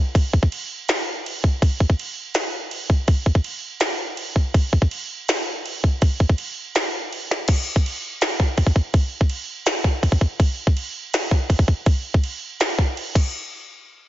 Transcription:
0.15 kick, crash
0.33 kick
0.43 kick
0.52 crash
0.89 snare, crash
1.26 crash
1.44 kick
1.62 kick, crash
1.80 kick
1.90 kick
2.00 crash
2.34 snare, crash
2.71 crash
2.90 kick
3.08 kick, crash
3.26 kick
3.35 kick
3.44 crash
3.80 snare, crash
4.17 crash
4.36 kick
4.54 kick, crash
4.73 kick
4.82 kick
4.91 crash
5.29 snare, crash
5.66 crash
5.84 kick
6.02 kick, crash
6.20 kick
6.29 kick
6.38 crash
6.75 snare, crash
7.13 crash
7.31 snare
7.48 kick, crash
7.76 kick
7.86 crash
8.21 snare, crash
8.40 kick
8.58 kick, crash
8.67 kick
8.76 kick
8.94 kick, crash
9.21 kick
9.30 crash
9.66 snare, crash
9.84 kick
10.03 kick, crash
10.12 kick
10.21 kick
10.40 kick, crash
10.67 kick
10.77 crash
11.14 snare, crash
11.31 kick
11.50 kick, crash
11.59 kick
11.68 kick
11.86 kick, crash
12.14 kick
12.24 crash
12.60 snare, crash
12.79 kick
12.97 crash
13.15 kick, crash

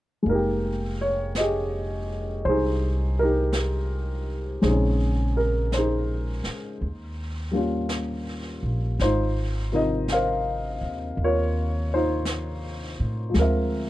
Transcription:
0.23 F1 G#3, brush sweep
0.27 A#3 D#4 A#4
0.32 G4 G5
1.01 C#5
1.35 D#5, brush sweep, snare, hi-hat pedal
1.41 G4 G#4
2.43 C2 C5, brush sweep
2.49 D#4 G#4
3.19 D#4 G4 A#4
3.53 brush sweep, snare, hi-hat pedal
4.62 A#1 C#3 G#3 G#4 C5, brush sweep, snare
4.67 C4 C#4 D#4
5.37 A#4
5.72 C5, brush sweep, snare, hi-hat pedal
5.77 D#4 G#4
6.44 muted upright bass stroke, snare
6.81 D#2, brush sweep
7.51 G3 A#3 C#4
7.57 F4
7.89 brush sweep, snare, hi-hat pedal
8.63 A#1
8.99 G#1 D#4 F4 C5, brush sweep, snare
9.72 C3 F3 D#4 A#4 D#5
10.08 brush sweep, snare, hi-hat pedal
10.12 A#4 C5 F5
10.81 D#2
11.17 D#2, brush sweep
11.24 F4 A#4 C#5
11.94 D#4 F4 C5
12.25 brush sweep, snare, hi-hat pedal
13.00 A2
13.30 F3
13.34 D2 G#3, brush sweep, snare
13.38 C4 F4 A#4 E5

